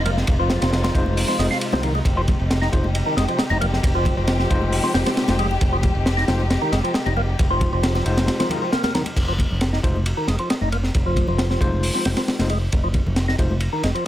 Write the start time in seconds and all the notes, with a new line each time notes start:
Already playing: F1 C3 G#3 D#4 F4
0.05 A#3, ride, low conga
0.17 snare
0.27 F1, kick, ride
0.39 F3
0.49 snare, ride, high conga, low conga
0.62 F1 F3, snare, ride
0.73 snare, ride
0.84 F3, snare, ride, muted conga
0.95 F1 G#3 D#4 F4 C5, kick, ride
1.06 high conga
1.17 open hi-hat
1.28 F3, snare
1.39 F1 G#3, snare, ride
1.51 F4, snare
1.61 ride
1.72 C2 F3 G#3 D#4 F4 C5, snare, muted conga, high conga
1.83 D#3, ride, low conga
1.95 G#3, muted conga
2.05 F1 G4, kick, ride
2.17 F3
2.28 kick, ride, high conga, low conga
2.40 F1
2.51 snare, ride
2.62 D#4, snare
2.72 F1 G#3 D#4 F4 C5, kick, ride
2.84 high conga
2.95 ride
3.06 D#3
3.17 F1 G#3, snare, ride
3.28 F3, ride
3.39 G#3, snare, ride
3.50 F1 D#4, muted conga, high conga
3.61 A#3, ride, low conga
3.73 snare
3.83 F1, kick, ride
3.95 F3
4.05 kick, ride, high conga, low conga
4.17 F1 F3
4.27 snare, ride
4.39 F3, snare
4.50 F1 G#3 D#4 F4 C5, kick, ride
4.62 high conga
4.72 open hi-hat
4.83 F3, snare
4.94 F1 C4, snare, ride
5.06 F3, snare, ride
5.17 snare, ride
5.28 F1 G#3 D#4 F4 C5, snare, ride, muted conga, high conga
5.39 G#3, ride, low conga
5.51 muted conga
5.61 F1, kick, ride
5.73 F3
5.83 kick, ride, high conga, low conga
5.95 F1
6.06 snare, ride
6.17 D#4, snare
6.28 F1 G#3 D#4 F4 C5, snare, ride
6.40 high conga
6.50 snare, ride
6.62 D#3
6.72 F1 G#3, snare, ride
6.84 F3, ride
6.94 G#3, snare, ride
7.06 F1 D#4, muted conga, high conga
7.17 A#3, low conga
7.39 F1, kick, ride
7.51 F3
7.61 kick, ride, high conga, low conga
7.73 F1 F3
7.83 snare, ride
7.95 F3, snare, muted conga
8.06 F1 G#3 D#4 F4 C5, ride
8.17 snare, ride, high conga
8.27 snare, ride
8.40 F3, snare, ride
8.49 D#3 G#3 D#4 F4 A#4, ride, low conga
8.62 F3
8.72 A#3, snare, ride
8.84 A#3, snare, ride, muted conga, high conga
8.95 D#3, snare, ride, low conga
9.06 ride, muted conga
9.16 F1, kick, crash, ride
9.28 F3
9.38 kick, ride, high conga
9.50 F1, low conga
9.61 snare, ride
9.73 D#4, snare
9.83 F1 G#3 D#4 F4 C5, kick, ride
9.96 high conga
10.06 ride
10.17 D#3
10.28 F1 G#3, snare, ride
10.38 F3, ride
10.50 G#3, snare, ride
10.61 F1 D#4, high conga
10.72 A#3, ride
10.83 snare
10.94 F1, kick, ride
11.06 F3
11.16 kick, ride, high conga
11.28 F1 F3, low conga
11.38 snare, ride
11.50 F3, snare
11.61 F1 G#3 D#4 F4 C5, kick, ride, low conga
11.73 high conga
11.83 open hi-hat
11.95 F3, snare
12.05 F1 C4, snare, ride
12.17 F3, snare, ride
12.28 snare, ride
12.39 F1 G#3 D#4 F4 C5, snare, ride, high conga
12.49 G#3, ride
12.72 F1, kick, ride
12.84 F3
12.94 kick, ride, high conga
13.06 F1, low conga
13.16 snare, ride
13.28 D#4, snare
13.38 F1 G#3 D#4 F4 C5, kick, ride
13.51 high conga
13.60 ride
13.73 D#3
13.83 F1 G#3, snare, ride
13.95 F3, ride